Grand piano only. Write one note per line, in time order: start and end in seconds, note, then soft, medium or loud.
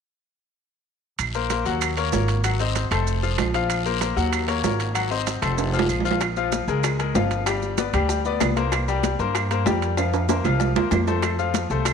1.35 1.48 A#3 medium
1.35 1.48 A#4 medium
1.35 1.48 C5 medium
1.50 1.63 A#3 medium
1.50 1.63 A#4 medium
1.50 1.64 C5 medium
1.65 1.91 F#3 medium
1.65 1.92 F#4 medium
1.65 1.92 F#5 medium
1.97 2.10 A#3 medium
1.97 2.10 A#4 medium
1.97 2.10 C#5 medium
2.13 2.39 A#3 medium
2.13 2.39 A#4 medium
2.13 2.39 C#5 medium
2.44 2.57 F#3 medium
2.44 2.57 F#4 medium
2.44 2.57 F#5 medium
2.60 2.86 C4 medium
2.60 2.86 C5 medium
2.60 2.86 D#5 medium
2.91 3.17 A3 medium
2.91 3.17 A4 medium
2.91 3.18 C5 medium
3.23 3.49 F3 medium
3.23 3.49 F4 medium
3.23 3.49 F5 medium
3.54 3.80 F3 medium
3.54 3.80 F4 medium
3.54 3.80 F5 medium
3.86 3.99 A#3 medium
3.86 3.99 A#4 medium
3.86 3.99 C5 medium
4.01 4.14 A#3 medium
4.01 4.14 A#4 medium
4.01 4.14 C5 medium
4.17 4.42 F#3 medium
4.17 4.43 F#4 medium
4.17 4.43 F#5 medium
4.48 4.61 A#3 medium
4.48 4.61 A#4 medium
4.48 4.61 C#5 medium
4.64 4.90 A#3 medium
4.64 4.90 A#4 medium
4.64 4.90 C#5 medium
4.95 5.08 F#3 medium
4.95 5.08 F#4 medium
4.95 5.08 F#5 medium
5.11 5.37 C4 medium
5.11 5.37 C5 medium
5.11 5.37 D#5 medium
5.42 5.68 A3 medium
5.42 5.68 A4 medium
5.42 5.68 C5 medium
5.73 5.99 F3 medium
5.73 6.00 F4 medium
5.73 6.00 F5 medium
6.05 6.18 F3 medium
6.05 6.18 F4 medium
6.05 6.18 F5 medium
6.37 6.62 F3 medium
6.37 6.63 F4 medium
6.37 6.63 F5 medium
6.68 6.94 G#3 medium
6.68 6.94 G#4 medium
6.68 6.94 A#4 medium
6.99 7.12 G#3 medium
6.99 7.12 G#4 medium
6.99 7.13 A#4 medium
7.15 7.41 F3 medium
7.15 7.41 F4 medium
7.15 7.41 F5 medium
7.47 7.73 G3 medium
7.47 7.73 G4 medium
7.47 7.73 G5 medium
7.78 7.91 B3 medium
7.78 7.91 B4 medium
7.78 7.91 D5 medium
7.94 8.19 G3 medium
7.94 8.19 G4 medium
7.94 8.20 G5 medium
8.26 8.51 B3 medium
8.26 8.51 B4 medium
8.26 8.52 D5 medium
8.56 8.82 A#3 medium
8.56 8.82 A#4 medium
8.56 8.82 C5 medium
8.88 9.14 G3 medium
8.88 9.14 G4 medium
8.88 9.14 G5 medium
9.19 9.45 A#3 medium
9.19 9.45 A#4 medium
9.19 9.45 C5 medium
9.51 9.63 A#3 medium
9.51 9.64 A#4 medium
9.51 9.64 C5 medium
9.66 9.92 G3 medium
9.66 9.92 G4 medium
9.66 9.92 G5 medium
9.98 10.23 F3 medium
9.98 10.23 F4 medium
9.98 10.24 F5 medium
10.29 10.42 A#3 medium
10.29 10.42 A#4 medium
10.29 10.42 C5 medium
10.45 10.70 F3 medium
10.45 10.71 F4 medium
10.45 10.71 F5 medium
10.76 11.02 A#3 medium
10.76 11.02 A#4 medium
10.76 11.02 C5 medium
11.07 11.33 A3 medium
11.07 11.34 A4 medium
11.07 11.34 C5 medium
11.39 11.65 F3 medium
11.39 11.65 F4 medium
11.39 11.65 F5 medium
11.71 11.93 A3 medium
11.71 11.93 A4 medium
11.71 11.93 C5 medium